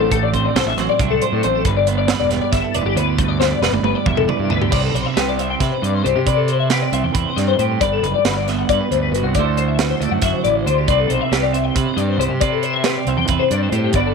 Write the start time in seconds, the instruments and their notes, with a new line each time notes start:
Already playing: fingered electric bass A1, clean electric guitar D4
0.00 clean electric guitar A4
0.10 clean electric guitar A2 A4, kick, closed hi-hat
0.23 clean electric guitar D5
0.34 clean electric guitar C4 C5, kick, closed hi-hat
0.45 clean electric guitar D5
0.55 fingered electric bass C2, clean electric guitar A4 C5, snare, closed hi-hat
0.66 fingered electric bass A1, clean electric guitar E5
0.77 fingered electric bass A1, clean electric guitar F#3 C4 C5, snare, closed hi-hat
0.89 clean electric guitar D5
0.99 fingered electric bass C2, clean electric guitar D4 E5, kick, closed hi-hat
1.10 clean electric guitar A4
1.21 clean electric guitar C5, closed hi-hat
1.32 fingered electric bass A2, clean electric guitar A4
1.43 fingered electric bass A1, clean electric guitar A2 C4 C5, closed hi-hat
1.55 clean electric guitar A4
1.65 fingered electric bass G1, clean electric guitar G2 B4, kick, closed hi-hat
1.77 clean electric guitar D5
1.87 clean electric guitar B3 C5, closed hi-hat
1.98 clean electric guitar D5
2.08 clean electric guitar B4, snare, closed hi-hat
2.20 fingered electric bass E1, clean electric guitar D5
2.30 clean electric guitar G3 B3 B4, snare, closed hi-hat
2.42 clean electric guitar D5
2.52 fingered electric bass G1, clean electric guitar E4 E5, kick, snare, closed hi-hat
2.64 clean electric guitar A4
2.74 fingered electric bass E1, clean electric guitar B4 D5, closed hi-hat
2.85 fingered electric bass G1, clean electric guitar G4
2.95 fingered electric bass D2, clean electric guitar D3 B3 B4, closed hi-hat
3.08 clean electric guitar G4
3.18 clean electric guitar G2 B4, kick, closed hi-hat
3.28 clean electric guitar D5
3.40 clean electric guitar B3 C5, snare
3.51 clean electric guitar D5
3.61 fingered electric bass E1, clean electric guitar B4, snare
3.73 fingered electric bass G1, clean electric guitar D5, high tom
3.83 fingered electric bass G1, clean electric guitar G3 B3 B4, high tom
3.95 clean electric guitar D5
4.06 fingered electric bass E1, clean electric guitar E4 E5, kick, mid tom
4.17 clean electric guitar A4, mid tom
4.28 clean electric guitar B4 D5, mid tom
4.39 fingered electric bass G2, clean electric guitar G4
4.50 fingered electric bass D2, clean electric guitar D3 B3 B4, floor tom
4.62 clean electric guitar G4, floor tom
4.70 fingered electric bass C2, clean electric guitar C3 B4 D5, kick, crash
4.83 clean electric guitar A4
4.94 fingered electric bass B1, clean electric guitar C5, closed hi-hat
5.06 clean electric guitar E5
5.16 fingered electric bass C2, clean electric guitar G4 B4, snare, closed hi-hat
5.28 clean electric guitar D5
5.38 clean electric guitar C4 E5, closed hi-hat
5.50 clean electric guitar G5
5.60 fingered electric bass C3, clean electric guitar B4 E5, kick, snare, closed hi-hat
5.72 clean electric guitar C5
5.82 fingered electric bass G2, clean electric guitar G2 D5, closed hi-hat
5.94 clean electric guitar C5
6.04 fingered electric bass C2, clean electric guitar G4 C5, closed hi-hat
6.15 fingered electric bass C3, clean electric guitar G4
6.27 clean electric guitar C3 B4 D5, kick, closed hi-hat
6.37 clean electric guitar A4
6.48 clean electric guitar C5, closed hi-hat
6.59 clean electric guitar E5
6.70 clean electric guitar G4 B4, snare, closed hi-hat
6.82 clean electric guitar D5
6.92 fingered electric bass C2, clean electric guitar C4 E5, closed hi-hat
7.04 fingered electric bass E2, clean electric guitar G5
7.14 fingered electric bass E2, clean electric guitar B4 E5, kick, closed hi-hat
7.26 clean electric guitar C5
7.36 fingered electric bass G2, clean electric guitar G2 D5, snare, closed hi-hat
7.48 clean electric guitar C5
7.59 fingered electric bass A2, clean electric guitar G4 C5, closed hi-hat
7.71 clean electric guitar G4
7.81 fingered electric bass G1, clean electric guitar G2 B4 D5, kick, closed hi-hat
7.92 clean electric guitar A4
8.03 fingered electric bass F#1, clean electric guitar B4, closed hi-hat
8.14 clean electric guitar D5
8.24 fingered electric bass G1, clean electric guitar F#4 B4, snare, closed hi-hat
8.37 clean electric guitar D5
8.48 clean electric guitar B3 E5, snare, closed hi-hat
8.59 clean electric guitar F#5
8.69 fingered electric bass G2, clean electric guitar B4 D5, kick, closed hi-hat
8.80 clean electric guitar B4
8.91 fingered electric bass D2, clean electric guitar G2 C5, closed hi-hat
9.02 clean electric guitar B4
9.12 fingered electric bass G1, clean electric guitar F#4 B4, closed hi-hat
9.23 fingered electric bass C2, clean electric guitar F#4
9.35 fingered electric bass D2, clean electric guitar D3 A3 D5, kick, closed hi-hat
9.39 clean electric guitar E4 F#4 C5
9.45 clean electric guitar A4
9.57 clean electric guitar C5, closed hi-hat
9.68 clean electric guitar E5
9.79 clean electric guitar F#4 B4, snare, closed hi-hat
9.90 clean electric guitar C5
10.00 fingered electric bass D2, clean electric guitar A3 D5, closed hi-hat
10.11 fingered electric bass F#2, clean electric guitar F#5
10.22 fingered electric bass F#2, clean electric guitar F#3 E5, kick, snare, closed hi-hat
10.34 clean electric guitar C5
10.44 fingered electric bass A1, clean electric guitar E3 D5, closed hi-hat
10.56 clean electric guitar C5
10.66 fingered electric bass D2, clean electric guitar D3 C5, closed hi-hat
10.78 clean electric guitar G4
10.88 fingered electric bass C2, clean electric guitar C3 B4 D5, kick, closed hi-hat
10.99 clean electric guitar A4
11.09 fingered electric bass B1, clean electric guitar C5, closed hi-hat
11.21 clean electric guitar E5
11.31 fingered electric bass C2, clean electric guitar G4 B4, snare, closed hi-hat
11.43 clean electric guitar D5
11.53 clean electric guitar C4 E5, closed hi-hat
11.64 clean electric guitar G5
11.75 fingered electric bass C3, clean electric guitar B4 E5, kick, closed hi-hat
11.86 clean electric guitar C5
11.97 fingered electric bass G2, clean electric guitar G2 D5, closed hi-hat
12.09 clean electric guitar C5
12.18 fingered electric bass C2, clean electric guitar G4 C5, closed hi-hat
12.28 fingered electric bass C3, clean electric guitar G4
12.41 clean electric guitar C3 B4 D5, kick, closed hi-hat
12.52 clean electric guitar A4
12.63 clean electric guitar C5, closed hi-hat
12.74 clean electric guitar E5
12.84 clean electric guitar G4 B4, snare, closed hi-hat
12.97 clean electric guitar D5
13.07 fingered electric bass C2, clean electric guitar C4 E5, closed hi-hat
13.17 fingered electric bass E2, clean electric guitar G5
13.28 fingered electric bass E2, clean electric guitar B4 E5, kick, closed hi-hat
13.40 clean electric guitar C5
13.50 fingered electric bass G2, clean electric guitar G2 D5, closed hi-hat
13.63 clean electric guitar C5
13.72 fingered electric bass A2, clean electric guitar G4 C5, closed hi-hat
13.84 clean electric guitar G4
13.93 fingered electric bass G1, clean electric guitar G2 B3 D4 F#4 D5, kick, closed hi-hat
13.97 clean electric guitar B4
14.07 clean electric guitar A4